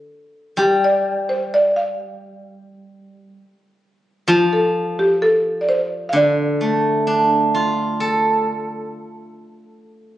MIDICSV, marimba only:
0, 0, Header, 1, 2, 480
1, 0, Start_track
1, 0, Tempo, 930233
1, 303, Time_signature, 4, 2, 24, 8
1, 5252, End_track
2, 0, Start_track
2, 0, Title_t, "Marimba"
2, 0, Program_c, 0, 12
2, 303, Note_on_c, 0, 67, 56
2, 427, Note_off_c, 0, 67, 0
2, 435, Note_on_c, 0, 74, 68
2, 667, Note_on_c, 0, 72, 64
2, 678, Note_off_c, 0, 74, 0
2, 790, Note_off_c, 0, 72, 0
2, 794, Note_on_c, 0, 74, 78
2, 910, Note_on_c, 0, 77, 67
2, 914, Note_off_c, 0, 74, 0
2, 1132, Note_off_c, 0, 77, 0
2, 2211, Note_on_c, 0, 65, 64
2, 2336, Note_on_c, 0, 69, 65
2, 2339, Note_off_c, 0, 65, 0
2, 2575, Note_on_c, 0, 67, 67
2, 2584, Note_off_c, 0, 69, 0
2, 2694, Note_on_c, 0, 69, 75
2, 2700, Note_off_c, 0, 67, 0
2, 2895, Note_on_c, 0, 74, 57
2, 2905, Note_off_c, 0, 69, 0
2, 2933, Note_off_c, 0, 74, 0
2, 2934, Note_on_c, 0, 72, 82
2, 3143, Note_on_c, 0, 77, 59
2, 3144, Note_off_c, 0, 72, 0
2, 3176, Note_off_c, 0, 77, 0
2, 3179, Note_on_c, 0, 74, 80
2, 5252, Note_off_c, 0, 74, 0
2, 5252, End_track
0, 0, End_of_file